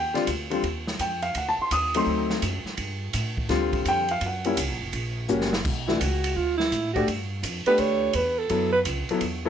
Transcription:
0.00 0.26 D#2 medium
0.00 0.15 G5 loud
0.14 0.26 D3 medium
0.14 0.26 G3 medium
0.14 0.26 C4 medium
0.14 0.26 F4 medium
0.14 0.23 D5 medium
0.14 snare soft
0.14 ride soft
0.27 0.62 D2 medium
0.27 kick soft
0.27 hi-hat pedal medium
0.27 ride medium
0.50 0.62 D3 medium
0.50 0.62 G3 medium
0.50 0.62 C4 medium
0.50 0.63 F4 medium
0.50 ride soft
0.63 0.98 D#2 medium
0.63 kick soft
0.63 ride medium
0.87 snare medium
0.99 1.34 F2 medium
0.99 1.23 G5 medium
0.99 kick soft
0.99 hi-hat pedal soft
0.99 ride medium
1.22 1.35 F5 medium
1.22 ride soft
1.35 1.57 D2 medium
1.35 1.48 F#5 medium
1.35 kick soft
1.35 ride medium
1.49 1.59 A5 medium
1.58 1.72 C6 medium
1.58 muted upright bass stroke soft
1.71 2.06 D#2 medium
1.71 1.94 D#6 loud
1.71 kick soft
1.71 hi-hat pedal medium
1.71 ride medium
1.94 2.40 F#3 medium
1.94 2.40 A3 medium
1.94 2.41 C4 medium
1.94 2.41 D#4 medium
1.94 2.40 C6 medium
1.94 ride medium
2.06 2.41 D2 medium
2.06 kick soft
2.30 snare soft
2.42 2.64 F#2 loud
2.42 kick soft
2.42 hi-hat pedal medium
2.42 ride medium
2.64 muted upright bass stroke soft
2.64 snare soft
2.77 3.13 G2 medium
2.77 kick soft
2.77 ride medium
3.13 3.48 A2 medium
3.13 kick soft
3.13 hi-hat pedal medium
3.13 ride medium
3.37 kick medium
3.49 3.84 D2 medium
3.49 4.04 D3 medium
3.49 4.04 G3 medium
3.49 4.04 C4 medium
3.49 4.04 F4 medium
3.49 kick soft
3.49 snare soft
3.49 ride medium
3.73 kick medium
3.73 ride soft
3.85 4.20 F2 medium
3.85 4.10 G5 loud
3.85 kick soft
3.85 hi-hat pedal medium
3.85 ride medium
4.08 4.22 F5 medium
4.08 ride soft
4.21 4.56 F#2 medium
4.21 kick soft
4.21 ride medium
4.26 4.79 F#5 medium
4.44 4.56 G3 medium
4.44 4.56 A#3 medium
4.44 4.56 C#4 medium
4.44 4.56 E4 medium
4.44 ride medium
4.57 4.69 C#2 medium
4.57 kick soft
4.57 hi-hat pedal medium
4.57 ride medium
4.69 4.81 A#1 medium
4.81 4.92 F#1 medium
4.93 5.27 A#1 medium
4.93 kick soft
4.93 ride medium
5.28 5.63 F#1 medium
5.28 5.50 G3 medium
5.28 5.49 A#3 medium
5.28 5.50 C#4 medium
5.28 5.50 F#4 medium
5.28 hi-hat pedal medium
5.41 snare medium
5.53 snare medium
5.65 5.99 B1 medium
5.65 kick medium
5.65 crash medium
5.88 5.99 E3 medium
5.88 5.99 A3 medium
5.88 5.99 D4 medium
5.88 6.01 E4 medium
5.88 5.99 F#4 medium
5.88 snare soft
5.99 6.35 C#2 medium
5.99 6.38 F#4 medium
5.99 kick soft
5.99 hi-hat pedal soft
5.99 ride medium
6.24 ride medium
6.36 6.71 D2 medium
6.36 6.57 F4 medium
6.36 kick soft
6.58 6.91 E4 medium
6.58 snare medium
6.72 7.06 A2 medium
6.72 kick soft
6.72 hi-hat pedal medium
6.72 ride medium
6.93 7.06 A3 medium
6.93 7.06 D4 medium
6.93 7.06 F#4 medium
6.93 7.06 G4 medium
6.93 7.07 D5 medium
6.93 kick soft
6.93 ride soft
7.08 7.42 G2 medium
7.08 kick soft
7.08 ride medium
7.43 7.65 F2 medium
7.43 kick soft
7.43 hi-hat pedal medium
7.43 ride medium
7.66 8.12 A3 medium
7.66 8.12 D4 medium
7.66 8.12 G4 medium
7.66 7.81 B4 loud
7.66 8.12 B4 medium
7.66 muted upright bass stroke soft
7.66 ride soft
7.78 8.13 D2 medium
7.78 8.17 C#5 loud
7.78 kick soft
7.78 ride medium
8.13 8.49 E2 medium
8.13 8.40 B4 medium
8.13 kick soft
8.13 hi-hat pedal soft
8.13 ride medium
8.39 8.72 A4 medium
8.49 8.85 F#2 medium
8.49 8.71 F#3 medium
8.49 8.71 B3 medium
8.49 8.71 E4 medium
8.49 8.71 A4 medium
8.49 kick soft
8.49 ride medium
8.72 8.80 B4 medium
8.85 9.08 C#2 loud
8.85 kick soft
8.85 hi-hat pedal medium
8.85 ride medium
9.08 9.21 F#3 medium
9.08 9.21 B3 medium
9.08 9.21 E4 medium
9.08 9.21 A4 medium
9.08 muted upright bass stroke soft
9.08 ride medium
9.21 9.49 E2 medium
9.21 kick soft
9.21 ride medium
9.45 9.49 F#3 medium
9.45 9.49 B3 medium
9.45 9.49 E4 medium

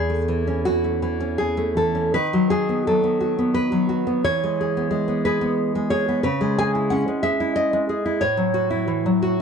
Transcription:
0.00 2.09 E2 soft
0.00 0.61 G#4 medium
0.10 0.83 A3 soft
0.28 0.65 E3 soft
0.47 1.19 C#4 soft
0.65 1.01 E3 soft
0.65 1.36 F#4 medium
0.84 1.56 A3 soft
1.02 1.76 E3 soft
1.20 1.94 C#4 soft
1.38 1.75 G#4 medium
1.57 2.13 A3 soft
1.77 2.13 E3 soft
1.77 2.12 A4 medium
1.95 2.13 C#4 soft
2.14 4.19 D#3 soft
2.14 2.47 B4 medium
2.33 2.86 F#3 soft
2.50 3.19 F#4 soft
2.50 2.83 G#4 medium
2.69 3.02 B3 soft
2.87 3.71 F#3 soft
2.87 3.52 A4 medium
3.04 3.37 B3 soft
3.21 3.88 F#4 soft
3.39 4.06 B3 soft
3.54 4.21 B4 medium
3.72 4.24 F#3 soft
3.89 4.23 F#4 soft
4.07 4.23 B3 soft
4.24 6.21 E3 medium
4.24 5.20 C#5 medium
4.43 4.89 G#3 soft
4.61 5.25 G#4 soft
4.77 5.07 B3 soft
4.91 5.74 G#3 soft
5.08 5.40 B3 soft
5.25 5.90 G#4 soft
5.25 5.56 B4 medium
5.41 6.07 B3 soft
5.75 6.25 G#3 soft
5.90 6.08 G#4 soft
5.90 6.23 C#5 medium
6.09 6.25 B3 soft
6.23 7.07 C#3 medium
6.23 6.56 B4 medium
6.41 7.07 G#3 soft
6.58 7.23 G#4 soft
6.58 6.74 G#5 medium
6.75 7.39 E4 soft
6.90 7.89 C#4 soft
6.90 7.22 F#5 medium
7.08 7.72 G#3 soft
7.23 7.88 G#4 soft
7.23 7.55 E5 medium
7.40 8.04 E4 soft
7.56 8.18 D#5 medium
7.73 8.21 G#3 soft
7.89 8.21 G#4 soft
8.06 8.21 E4 soft
8.21 9.42 A2 medium
8.21 9.42 C#5 medium
8.37 8.87 F#3 soft
8.54 9.21 F#4 soft
8.71 9.39 E4 soft
8.88 9.05 E3 soft
9.06 9.42 F#3 soft
9.22 9.42 F#4 soft

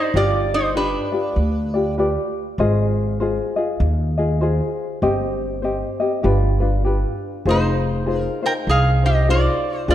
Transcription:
0.00 0.14 D#4 medium
0.00 0.15 D#4 medium
0.00 0.15 G4 medium
0.00 0.15 A#4 medium
0.00 0.15 C5 medium
0.00 0.17 C5 medium
0.14 0.93 G1 medium
0.14 0.75 F4 medium
0.14 0.50 F4 medium
0.14 0.74 G4 medium
0.14 0.75 D5 medium
0.14 0.54 D5 medium
0.54 0.76 D#4 medium
0.54 0.76 C5 medium
0.75 1.94 D4 soft
0.75 1.12 F4 medium
0.75 1.12 G4 medium
0.75 1.12 B4 medium
0.75 1.94 B4 medium
0.75 1.11 D5 medium
1.12 1.75 F4 soft
1.12 1.74 G4 medium
1.12 1.73 D5 medium
1.36 2.15 D2 medium
1.74 1.97 F4 soft
1.74 1.97 G4 medium
1.74 1.98 D5 medium
1.98 2.59 F4 medium
1.98 2.58 G4 medium
1.98 2.59 B4 medium
1.98 2.59 D5 medium
2.58 3.37 G#1 medium
2.58 3.20 F4 medium
2.58 3.20 G#4 medium
2.58 3.20 C5 medium
2.58 3.22 D#5 medium
3.20 3.57 F4 medium
3.20 3.56 G#4 medium
3.20 3.57 C5 medium
3.20 3.55 D#5 medium
3.56 4.18 F4 soft
3.56 4.17 G#4 medium
3.56 4.17 D#5 medium
3.80 4.59 D#2 loud
4.18 4.40 F4 soft
4.18 4.41 G#4 medium
4.18 4.41 D#5 medium
4.41 5.02 F4 medium
4.41 5.01 G#4 medium
4.41 5.01 C5 medium
4.41 5.02 D#5 medium
5.02 5.81 G1 medium
5.02 5.62 C4 medium
5.02 5.63 G4 medium
5.02 5.61 C5 medium
5.02 5.63 D#5 loud
5.62 6.00 C4 medium
5.62 6.00 G4 medium
5.62 5.99 C5 medium
5.62 5.99 D#5 medium
6.00 6.23 C4 soft
6.00 6.22 G4 medium
6.00 6.24 D#5 medium
6.23 7.03 G1 medium
6.23 6.61 D4 medium
6.23 6.60 F4 medium
6.23 6.60 G4 medium
6.23 6.59 B4 medium
6.60 6.84 D4 soft
6.60 6.85 F4 soft
6.60 6.84 B4 medium
6.84 7.46 D4 medium
6.84 7.46 F4 medium
6.84 7.45 G4 medium
6.84 7.46 B4 medium
7.45 8.25 F1 medium
7.45 8.05 D#4 medium
7.45 8.41 D#4 medium
7.45 8.07 F4 medium
7.45 8.06 G#4 medium
7.45 8.08 C5 medium
7.50 8.21 C5 medium
8.06 8.43 D#4 medium
8.06 8.42 F4 medium
8.06 8.43 G#4 medium
8.06 8.41 C5 medium
8.21 8.46 A#4 medium
8.43 9.04 D#4 soft
8.43 9.04 F4 medium
8.43 8.52 A#4 medium
8.43 9.03 C5 medium
8.43 8.52 G5 medium
8.67 9.46 C2 medium
8.67 9.03 G#4 medium
8.67 9.05 F5 medium
9.03 9.27 D#4 soft
9.03 9.28 F4 soft
9.03 9.27 G4 medium
9.03 9.27 C5 soft
9.03 9.30 D#5 medium
9.28 9.88 D#4 medium
9.28 9.89 F4 medium
9.28 9.86 F4 medium
9.28 9.88 G#4 medium
9.28 9.89 C5 medium
9.28 9.78 D5 medium
9.78 9.91 C5 medium
9.88 9.95 D2 medium
9.88 9.95 D4 medium
9.88 9.95 F4 medium
9.88 9.95 G#4 medium
9.88 9.95 C5 medium

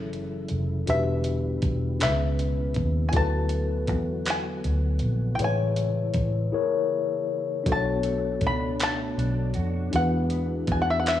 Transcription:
0.00 0.13 G#1 medium
0.00 0.84 C#3 medium
0.00 0.84 E3 medium
0.00 0.84 F#3 medium
0.00 0.84 A3 medium
0.00 0.82 C#4 medium
0.00 0.83 E4 medium
0.00 0.84 E4 medium
0.00 0.84 G#4 medium
0.00 0.85 A4 medium
0.00 0.89 F#5 medium
0.13 0.46 F#1 loud
0.13 closed hi-hat soft
0.48 0.84 F1 medium
0.48 closed hi-hat soft
0.86 1.59 E1 loud
0.86 3.11 B2 medium
0.86 1.99 D3 medium
0.86 1.99 G3 medium
0.86 5.36 B3 medium
0.86 1.99 D4 medium
0.86 3.11 E4 medium
0.86 2.00 F#4 medium
0.86 2.01 G4 medium
0.86 2.01 B4 medium
0.86 2.01 E5 loud
0.86 closed hi-hat medium
1.24 closed hi-hat medium
1.62 2.03 E1 medium
1.62 kick loud
1.62 closed hi-hat medium
1.99 2.72 C#2 loud
1.99 3.13 C#3 medium
1.99 3.13 G#3 medium
1.99 3.13 C#4 medium
1.99 2.07 D4 soft
1.99 3.14 G#4 medium
1.99 3.14 B4 medium
1.99 3.08 E5 loud
1.99 clap loud
1.99 closed hi-hat medium
2.07 3.10 E4 medium
2.39 closed hi-hat medium
2.74 3.10 D#2 medium
2.74 kick medium
2.74 closed hi-hat soft
3.09 5.35 E4 medium
3.09 3.14 G#5 medium
3.13 3.89 D2 loud
3.13 5.38 D3 medium
3.13 5.38 F#3 medium
3.13 6.50 A3 medium
3.13 5.36 F#4 medium
3.13 5.38 F#4 medium
3.13 5.37 A4 medium
3.13 4.24 A5 loud
3.13 kick loud
3.13 closed hi-hat medium
3.17 5.37 B4 medium
3.49 closed hi-hat medium
3.87 4.60 E2 medium
3.87 kick medium
3.87 closed hi-hat medium
4.25 clap loud
4.25 closed hi-hat medium
4.30 5.35 G#5 loud
4.64 4.98 D2 medium
4.64 closed hi-hat medium
4.99 5.36 A#1 medium
4.99 closed hi-hat soft
5.35 6.51 G#3 medium
5.35 6.51 E4 medium
5.35 5.41 G5 medium
5.39 6.11 A1 loud
5.39 7.64 C#3 medium
5.39 7.64 E3 medium
5.39 7.64 E4 medium
5.39 6.52 G#4 medium
5.39 6.53 B4 medium
5.39 6.53 C#5 medium
5.39 closed hi-hat medium
5.44 7.27 G#5 medium
5.76 closed hi-hat medium
6.14 6.49 A1 medium
6.14 kick medium
6.14 closed hi-hat medium
6.52 7.65 A#3 medium
6.52 7.66 E4 medium
6.52 7.66 G#4 medium
6.52 7.67 A#4 medium
6.52 7.67 C#5 medium
7.64 8.42 B1 loud
7.64 9.92 B2 medium
7.64 9.91 B3 medium
7.64 9.87 D4 medium
7.64 9.89 F#4 medium
7.64 9.91 F#4 medium
7.64 kick loud
7.64 closed hi-hat medium
7.68 9.91 A3 medium
7.68 11.20 D4 medium
7.68 9.90 A4 medium
7.68 7.74 C5 medium
7.72 8.46 A5 loud
7.76 9.94 C#5 medium
8.03 8.79 A3 medium
8.03 closed hi-hat medium
8.41 9.13 C#2 medium
8.41 9.18 D4 medium
8.41 kick medium
8.41 closed hi-hat medium
8.47 8.79 B5 loud
8.80 10.01 A3 medium
8.80 9.95 A5 loud
8.80 clap loud
8.80 closed hi-hat medium
9.18 9.51 B1 loud
9.18 10.68 D4 medium
9.18 closed hi-hat soft
9.54 9.90 F2 loud
9.54 10.00 F#4 medium
9.54 closed hi-hat soft
9.91 10.65 E2 loud
9.91 11.20 E3 medium
9.91 11.20 G#3 medium
9.91 11.20 B3 medium
9.91 11.20 D4 medium
9.91 11.20 F#4 medium
9.91 11.20 G#4 medium
9.91 closed hi-hat medium
9.95 11.20 E4 medium
9.95 11.20 B4 medium
9.95 10.71 F#5 loud
10.30 11.06 B3 medium
10.30 closed hi-hat medium
10.67 11.20 E2 medium
10.67 11.20 D4 medium
10.67 kick medium
10.67 closed hi-hat medium
10.72 10.80 G#5 medium
10.82 10.89 F#5 medium
10.90 10.98 E5 medium
11.00 11.07 F#5 medium
11.06 11.20 B3 medium
11.06 11.20 E5 medium
11.06 clap loud
11.06 closed hi-hat medium

